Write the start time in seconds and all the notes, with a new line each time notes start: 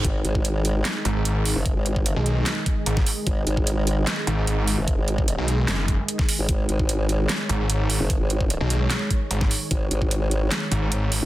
Already playing: D#3 G#3 G#4
0.04 G#1 D#5, kick, closed hi-hat
0.25 G#1, closed hi-hat
0.35 kick
0.45 closed hi-hat
0.65 closed hi-hat
0.85 snare, clap, closed hi-hat
1.05 G#1, closed hi-hat
1.16 G#1
1.25 closed hi-hat
1.45 open hi-hat
1.56 F#1
1.66 kick, closed hi-hat
1.76 G#1
1.86 closed hi-hat
1.96 kick
2.06 closed hi-hat
2.16 B1
2.26 closed hi-hat
2.46 snare, clap, closed hi-hat
2.66 kick, closed hi-hat
2.86 G#1, closed hi-hat
2.97 kick, snare
3.06 open hi-hat
3.27 G#1, kick, closed hi-hat
3.47 G#1, closed hi-hat
3.57 kick
3.67 closed hi-hat
3.87 closed hi-hat
4.07 snare, clap, closed hi-hat
4.27 G#1, closed hi-hat
4.38 G#1
4.47 closed hi-hat
4.68 open hi-hat
4.78 F#1
4.88 kick, closed hi-hat
4.98 G#1
5.08 closed hi-hat
5.18 kick
5.28 closed hi-hat
5.38 B1
5.48 closed hi-hat
5.68 F#1, snare, clap, closed hi-hat
5.88 kick, closed hi-hat
6.08 closed hi-hat
6.19 kick, snare
6.29 open hi-hat
6.39 G#1
6.49 G#1 C#5, kick, closed hi-hat
6.69 G#1, closed hi-hat
6.79 kick
6.89 closed hi-hat
7.09 closed hi-hat
7.29 snare, clap, closed hi-hat
7.49 G#1, closed hi-hat
7.60 G#1
7.70 closed hi-hat
7.90 open hi-hat
8.00 F#1
8.10 kick, closed hi-hat
8.20 G#1
8.30 closed hi-hat
8.41 kick
8.50 closed hi-hat
8.61 B1
8.70 closed hi-hat
8.90 snare, clap, closed hi-hat
9.11 kick, closed hi-hat
9.31 G#1, closed hi-hat
9.41 kick, snare
9.51 open hi-hat
9.71 G#1, kick, closed hi-hat
9.91 G#1, closed hi-hat
10.02 kick
10.11 closed hi-hat
10.31 closed hi-hat
10.51 snare, clap, closed hi-hat
10.71 G#1, closed hi-hat
10.82 G#1
10.92 closed hi-hat
11.12 open hi-hat